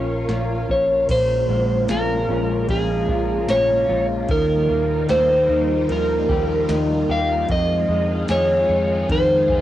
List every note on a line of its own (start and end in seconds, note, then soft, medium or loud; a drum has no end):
0.00 0.24 A#1 medium
0.00 1.08 A#2 medium
0.00 1.48 A#3 soft
0.00 0.69 C#4 medium
0.00 0.66 F4 medium
0.00 1.07 A#4 medium
0.00 1.07 C#5 medium
0.00 1.08 F5 medium
0.00 1.06 C#6 medium
0.29 0.64 A#1 medium
0.29 1.88 F4 medium
0.29 snare medium
0.29 closed hi-hat medium
0.69 1.04 A#1 medium
0.69 2.28 C#4 medium
0.69 1.11 C#5 medium
0.69 kick medium
1.08 1.44 A#1 loud
1.08 4.29 A#2 medium
1.08 4.25 G#3 medium
1.08 7.45 A#3 medium
1.08 4.26 C#4 medium
1.08 9.61 F4 medium
1.08 4.26 A#4 medium
1.08 1.90 C5 loud
1.08 kick loud
1.08 crash medium
1.08 ride medium
1.49 1.84 A#1 medium
1.49 4.37 G#3 medium
1.88 2.24 A#1 medium
1.88 3.08 F4 medium
1.88 2.70 A#4 medium
1.88 snare loud
1.88 ride medium
1.88 tambourine medium
2.29 2.64 A#1 loud
2.29 3.48 C#4 medium
2.68 3.04 A#1 medium
2.68 4.29 F3 medium
2.68 3.50 G#4 medium
2.68 kick medium
2.68 ride medium
3.09 3.44 A#1 loud
3.09 3.89 F4 medium
3.09 kick loud
3.48 3.84 A#1 medium
3.48 4.37 C#4 medium
3.48 4.06 C#5 loud
3.48 snare loud
3.48 ride medium
3.48 tambourine medium
3.89 4.25 A#1 loud
3.89 5.12 F4 medium
4.29 4.64 D#2 loud
4.29 7.52 D#3 medium
4.29 7.46 G3 medium
4.29 7.46 D#4 medium
4.29 7.46 A#4 medium
4.29 5.10 A#4 medium
4.29 kick loud
4.29 ride medium
4.69 5.05 D#2 loud
4.69 7.57 A#3 medium
5.09 5.45 D#2 medium
5.09 6.28 G4 medium
5.09 5.92 C5 medium
5.09 snare loud
5.09 ride medium
5.09 tambourine medium
5.49 5.84 D#2 loud
5.49 6.69 D#4 medium
5.89 6.24 D#2 loud
5.89 9.09 F3 medium
5.89 7.14 A#4 medium
5.89 ride medium
6.29 6.64 D#2 loud
6.29 7.08 G4 medium
6.29 kick loud
6.69 7.04 D#2 loud
6.69 9.61 D#4 medium
6.69 snare loud
6.69 ride medium
6.69 tambourine medium
7.09 7.44 D#2 loud
7.09 7.57 G4 medium
7.09 7.51 F5 loud
7.49 7.84 F2 loud
7.49 9.61 F2 medium
7.49 9.61 D#3 medium
7.49 9.61 G#3 medium
7.49 9.61 D#4 medium
7.49 9.61 G#4 medium
7.49 8.31 D#5 loud
7.49 kick loud
7.49 ride medium
7.89 8.24 F2 medium
7.89 9.61 G#3 medium
8.28 8.64 F2 loud
8.28 9.49 G#4 medium
8.28 9.11 C#5 medium
8.28 snare loud
8.28 ride medium
8.28 tambourine medium
8.69 9.04 F2 loud
9.09 9.44 F2 loud
9.09 9.61 D#3 medium
9.09 9.61 C5 medium
9.09 kick loud
9.09 ride medium
9.49 9.61 F2 loud
9.49 9.61 G#4 medium
9.49 kick loud